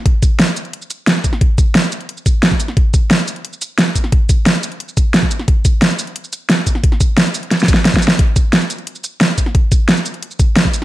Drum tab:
HH |x-----x-----x--x--x--x--x-----x-----x-----x-----|x-----x-----x--x--x--x--x-----x-----x--x--x-----|x-----x-----x--x--x--x--x-----x-----x-----x-----|x-----x-----x--x--x--x--x-----x-----x-----x-----|
SH |------x--------x--x--------x--x-----------x-----|------x--------x--x--------x--x-----------x-----|------x--------x--x--------x--x-----------x-----|------x--------x--x--------x--x-----------x-----|
SD |------------o-----------------------o--------o--|------------o-----------------------o--------o--|------------o-----------------------o--------o--|------------o-----------------------o--------o--|
BD |o-----o-----------------------------------o-----|o-----o-----------------------o--------o--------|o-----o-----------------------------------o-----|o-----o-----------------------o--------o--------|

HH |x-----x-----x--x--x--x--x-----x-----x-----x-----|x-----x-----x--x--x--x--x--x--x-----x-----x-----|x-----x-----x--x--x--x--x-----x-----x-----x-----|x-----x-----x--x--x--x--x-----x-----x-----x-----|
SH |------x--------x--x--------x--x-----------x-----|------x--------x--x--------x--x--------x--x-----|------x--------x--x--------x--x-----------x-----|------x--------x--x--------x--x-----------x-----|
SD |------------o-----------------------o--------o--|---o--------o-----------o---o---o---o---o---o---|------------o-----------------------o--------o--|------------o-----------------------o-----------|
BD |o-----o-----------------------------------o-----|o-----o-----------------------o--------o--------|o-----o-----------------------------------o-----|o-----o-----------------------o--------o--------|